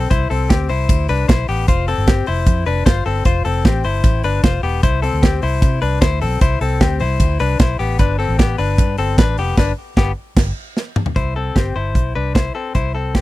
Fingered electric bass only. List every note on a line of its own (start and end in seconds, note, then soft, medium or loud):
0.11 0.27 C2 loud
0.31 0.47 C2 medium
0.50 0.67 D2 medium
0.70 0.86 C2 medium
0.89 1.06 D2 medium
1.09 1.26 C2 medium
1.29 1.46 B1 medium
1.49 1.65 A1 medium
1.68 1.93 F1 loud
1.98 2.23 G1 medium
2.28 2.44 F1 medium
2.47 2.64 F2 medium
2.67 2.83 F1 loud
2.86 3.03 G1 loud
3.06 3.22 G1 medium
3.26 3.42 F1 loud
3.45 3.62 F1 medium
3.65 3.82 A1 medium
3.85 4.02 G1 medium
4.04 4.21 A1 loud
4.24 4.41 G1 medium
4.44 4.61 F1 loud
4.63 4.80 E1 medium
4.83 5.08 C2 loud
5.13 5.38 D2 medium
5.43 5.59 C2 medium
5.62 5.79 C3 loud
5.82 5.99 C2 medium
6.02 6.24 D2 loud
6.22 6.39 B1 medium
6.41 6.58 C2 loud
6.61 6.78 C2 loud
6.81 7.02 D2 medium
7.00 7.17 C2 loud
7.20 7.37 D2 loud
7.40 7.57 C2 medium
7.60 7.77 B1 medium
7.80 7.96 A1 medium
7.99 8.25 G1 medium
8.29 8.54 A1 medium
8.59 8.80 G1 medium
8.78 8.95 G2 loud
8.98 9.15 G1 loud
9.18 9.35 A1 loud
9.38 9.55 F1 medium
9.58 9.71 G1 loud
9.97 10.10 G1 loud
10.37 10.50 G1 loud
11.16 11.50 C2 medium
11.56 11.73 G1 medium
11.76 11.95 G1 medium
11.95 12.12 B1 medium
12.16 12.49 C2 medium
12.75 13.16 C2 medium
13.15 13.21 G1 medium